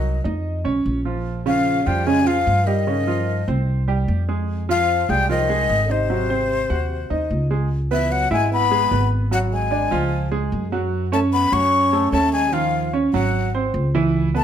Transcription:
0.00 0.19 C2 medium
0.00 0.21 D#3 medium
0.00 0.17 F#3 medium
0.00 0.18 F#4 medium
0.00 0.21 D#5 medium
0.24 0.63 F2 medium
0.24 0.58 D#4 medium
0.24 0.58 D#5 medium
0.64 0.84 B1 medium
0.64 0.98 C#4 medium
0.64 0.98 C#5 medium
0.86 1.80 A#1 medium
1.05 1.38 F3 medium
1.05 1.39 F4 medium
1.46 1.79 C#3 medium
1.46 1.86 F3 medium
1.46 1.79 C#4 medium
1.46 1.88 F5 medium
1.85 2.43 F2 medium
1.85 2.03 F3 medium
1.85 2.06 G3 medium
1.85 2.03 F4 medium
1.85 2.08 G5 medium
2.05 2.23 C#3 medium
2.05 2.26 G#3 medium
2.05 2.23 C#4 medium
2.05 2.28 G#5 medium
2.25 2.67 F3 medium
2.25 2.60 F3 medium
2.25 2.60 F4 medium
2.25 2.68 F5 medium
2.47 3.42 G2 medium
2.65 3.47 D#3 medium
2.65 2.83 G3 medium
2.65 2.84 G4 medium
2.65 3.48 D#5 medium
2.87 3.04 C#3 medium
2.87 3.04 C#4 medium
3.07 3.40 F3 medium
3.07 3.41 F4 medium
3.48 4.04 C2 medium
3.48 3.81 C4 medium
3.48 3.81 C5 medium
3.88 4.21 G3 medium
3.88 4.21 G4 medium
4.08 5.03 F2 medium
4.29 4.62 G#3 medium
4.29 4.62 G#4 medium
4.69 5.02 F3 medium
4.69 5.11 F3 medium
4.69 5.02 F4 medium
4.69 5.11 F5 loud
5.09 5.65 C2 medium
5.09 5.29 G3 medium
5.09 5.26 G#3 medium
5.09 5.26 G#4 medium
5.09 5.30 G5 loud
5.29 5.91 D#3 medium
5.29 5.46 F3 medium
5.29 5.46 F4 medium
5.29 5.93 D#5 medium
5.49 5.82 G#3 medium
5.49 5.83 G#4 medium
5.69 6.64 G#1 medium
5.89 7.30 C3 medium
5.89 6.06 D#4 medium
5.89 7.31 C5 medium
5.89 6.06 D#5 medium
6.10 6.26 F#3 medium
6.10 6.26 F#4 medium
6.30 6.63 C4 medium
6.30 6.63 C5 medium
6.70 7.08 D#2 medium
6.70 7.03 F#4 medium
6.70 7.03 F#5 medium
7.10 7.29 D#2 medium
7.10 7.43 D#4 medium
7.10 7.43 D#5 medium
7.30 8.25 C#2 medium
7.51 7.67 G#3 medium
7.51 7.67 G#4 medium
7.91 8.12 E3 medium
7.91 8.24 B3 medium
7.91 8.24 B4 medium
7.91 8.13 E5 medium
8.11 8.30 F#3 medium
8.11 8.32 F#5 medium
8.31 8.87 G#1 medium
8.31 8.50 G#3 medium
8.31 8.64 E4 medium
8.31 8.64 E5 medium
8.31 8.50 G#5 loud
8.51 9.08 B3 loud
8.51 9.08 B5 loud
8.71 8.88 G#3 medium
8.71 8.88 G#4 medium
8.91 9.86 G#1 medium
8.91 9.24 B3 medium
8.91 9.24 B4 medium
9.31 9.64 F#3 medium
9.31 9.41 F#3 medium
9.31 9.65 F#4 medium
9.31 9.39 F#5 medium
9.52 10.28 G#3 medium
9.52 10.29 G#5 medium
9.71 9.88 D4 medium
9.71 9.88 D5 medium
9.91 10.48 C#2 medium
9.91 10.24 F3 medium
9.91 10.25 F4 medium
10.31 10.65 G#3 medium
10.31 10.65 G#4 medium
10.52 11.47 F#2 medium
10.72 11.05 F#3 medium
10.72 11.05 F#4 medium
11.12 11.21 A3 medium
11.12 11.45 C#4 medium
11.12 11.45 C#5 medium
11.12 11.19 A5 medium
11.33 11.53 B3 medium
11.33 11.55 B5 medium
11.52 12.09 F#2 medium
11.52 12.11 C#4 medium
11.52 11.86 F#4 medium
11.52 11.86 F#5 medium
11.52 12.12 C#6 loud
11.93 12.09 A3 medium
11.93 12.10 A4 medium
12.11 13.07 D#2 medium
12.11 12.31 A3 medium
12.11 12.46 C#4 medium
12.11 12.46 C#5 medium
12.11 12.31 A5 medium
12.32 12.54 G#3 medium
12.32 12.55 G#5 medium
12.52 12.86 D#3 medium
12.52 12.93 F3 medium
12.52 12.86 F4 medium
12.52 12.93 F5 medium
12.93 13.10 C#4 medium
12.93 13.10 C#5 medium
13.13 13.70 G#1 medium
13.13 13.51 F#3 medium
13.13 13.47 F#3 medium
13.13 13.47 F#4 medium
13.13 13.51 F#5 medium
13.55 13.87 C4 medium
13.55 13.87 C5 medium
13.74 14.44 C#2 medium
13.95 14.27 E3 medium
13.95 14.27 E4 medium
14.34 14.44 A3 medium
14.34 14.44 B3 medium
14.34 14.44 B4 medium
14.34 14.44 A5 medium

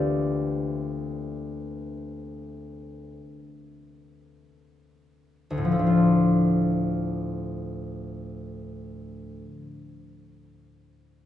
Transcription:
0.00 3.17 D2 soft
0.00 3.17 D3 soft
0.00 3.18 A3 soft
0.00 3.19 C4 soft
0.00 1.82 D4 soft
0.00 3.20 F4 soft
0.00 3.21 G4 medium
0.00 2.72 A4 medium
0.00 3.21 B4 medium
0.00 2.73 C5 medium
0.00 3.20 D5 medium
0.00 1.41 F5 medium
5.50 9.40 D2 medium
5.58 9.48 A2 soft
5.65 9.47 F3 soft
5.72 9.53 A3 soft
5.79 9.60 D4 medium
5.87 9.68 F4 medium

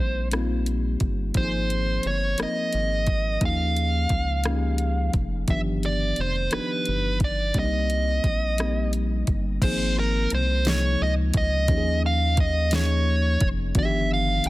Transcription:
0.00 0.97 A#1 medium
0.00 0.32 G3 medium
0.00 0.33 A#3 medium
0.00 0.33 C4 medium
0.00 0.33 D#4 medium
0.00 1.36 G4 medium
0.00 0.28 C5 medium
0.31 0.98 G3 medium
0.31 0.98 A#3 medium
0.31 0.98 C4 medium
0.31 0.99 D#4 medium
0.31 0.99 F4 medium
0.31 cross-stick loud
0.31 closed hi-hat medium
0.66 closed hi-hat medium
1.00 1.32 G1 medium
1.00 kick medium
1.00 closed hi-hat soft
1.34 2.00 G#1 medium
1.34 2.01 F3 medium
1.34 2.02 A#3 medium
1.34 2.02 C4 medium
1.34 2.02 D#4 medium
1.34 1.43 G4 medium
1.34 2.07 C5 medium
1.34 kick medium
1.34 closed hi-hat medium
1.44 2.06 G#4 medium
1.70 closed hi-hat soft
2.03 2.35 G1 medium
2.03 2.37 C#5 medium
2.03 closed hi-hat soft
2.38 2.46 G#1 soft
2.38 3.04 F3 medium
2.38 3.04 A#3 medium
2.38 3.05 C4 medium
2.38 3.05 D#4 medium
2.38 3.05 A#4 medium
2.38 cross-stick loud
2.38 closed hi-hat medium
2.43 3.45 D#5 medium
2.73 3.38 G#1 medium
2.73 closed hi-hat soft
3.07 kick medium
3.07 closed hi-hat soft
3.41 4.07 D#2 medium
3.41 4.07 F3 medium
3.41 4.08 A#3 medium
3.41 4.08 C#4 medium
3.41 4.08 D#4 medium
3.41 4.09 G#4 medium
3.41 kick loud
3.41 closed hi-hat medium
3.45 5.12 F5 medium
3.77 closed hi-hat soft
4.09 5.10 C#2 medium
4.09 kick medium
4.09 closed hi-hat soft
4.44 5.11 F3 medium
4.44 5.12 A#3 medium
4.44 5.12 C#4 medium
4.44 5.12 D#4 medium
4.44 cross-stick loud
4.44 closed hi-hat medium
4.48 4.53 G4 medium
4.54 5.16 G#4 medium
4.78 closed hi-hat medium
5.13 5.45 F1 medium
5.13 kick medium
5.13 closed hi-hat soft
5.48 6.13 G1 medium
5.48 6.16 D#3 medium
5.48 6.15 F3 medium
5.48 6.15 B3 medium
5.48 6.15 D4 medium
5.48 6.16 G4 medium
5.48 5.59 E5 medium
5.48 kick medium
5.48 closed hi-hat medium
5.83 6.20 D5 medium
5.83 closed hi-hat soft
6.16 6.49 F1 medium
6.16 closed hi-hat soft
6.20 6.51 C5 medium
6.51 6.60 G1 soft
6.51 7.18 F3 medium
6.51 7.18 B3 soft
6.51 7.19 D4 medium
6.51 7.19 D#4 medium
6.51 7.19 G4 medium
6.51 7.18 B4 medium
6.51 cross-stick loud
6.51 closed hi-hat medium
6.86 7.52 G1 medium
6.86 closed hi-hat medium
7.20 kick medium
7.20 closed hi-hat soft
7.24 7.58 D5 medium
7.54 8.20 C2 medium
7.54 8.21 G3 medium
7.54 8.22 A#3 medium
7.54 8.22 C4 medium
7.54 7.62 D4 medium
7.54 8.23 G4 medium
7.54 kick medium
7.54 closed hi-hat medium
7.59 8.91 D#5 medium
7.63 8.26 D#4 medium
7.90 closed hi-hat soft
8.24 9.24 A#1 medium
8.24 kick medium
8.24 closed hi-hat soft
8.58 9.25 G3 medium
8.58 9.25 A#3 medium
8.58 9.26 C4 medium
8.58 9.26 D#4 medium
8.58 9.26 G4 medium
8.58 cross-stick loud
8.58 closed hi-hat medium
8.93 closed hi-hat medium
9.27 9.59 G1 medium
9.27 kick medium
9.27 closed hi-hat soft
9.62 10.27 G#1 loud
9.62 10.28 F3 medium
9.62 10.28 A#3 medium
9.62 10.29 C4 medium
9.62 10.29 D#4 medium
9.62 10.29 G#4 medium
9.62 9.95 C5 medium
9.62 kick loud
9.62 closed hi-hat medium
9.62 crash medium
9.99 10.30 A#4 medium
10.30 10.97 C2 medium
10.30 closed hi-hat medium
10.34 10.68 C5 medium
10.65 11.32 C3 medium
10.65 11.31 F3 medium
10.65 11.32 A#3 medium
10.65 11.33 D#4 medium
10.65 11.33 G#4 medium
10.65 snare loud
10.65 closed hi-hat medium
10.69 11.03 C#5 medium
11.01 11.32 C#2 medium
11.01 11.12 D#5 medium
11.34 11.71 C#2 loud
11.34 12.01 D#5 medium
11.34 kick loud
11.34 closed hi-hat medium
11.68 13.37 D#2 medium
11.68 12.35 F3 medium
11.68 12.35 A#3 medium
11.68 12.36 C#4 medium
11.68 12.36 D#4 medium
11.68 11.76 G4 medium
11.68 kick loud
11.68 closed hi-hat medium
11.77 12.39 G#4 medium
12.06 12.37 F5 loud
12.37 12.71 D#5 medium
12.37 kick loud
12.37 closed hi-hat medium
12.71 13.38 F3 medium
12.71 13.39 A#3 medium
12.71 13.39 C#4 medium
12.71 13.39 D#4 medium
12.71 13.40 G#4 medium
12.71 snare loud
12.71 closed hi-hat medium
12.76 13.48 C#5 loud
13.41 13.73 F1 medium
13.41 kick loud
13.41 closed hi-hat medium
13.75 14.41 G1 loud
13.75 14.43 D#3 medium
13.75 14.42 F3 medium
13.75 14.42 B3 medium
13.75 14.42 D4 medium
13.75 13.83 F#4 medium
13.75 14.09 E5 medium
13.75 kick loud
13.75 closed hi-hat medium
13.85 14.47 G4 loud
14.14 14.44 F5 loud
14.44 14.49 A1 medium
14.44 closed hi-hat medium

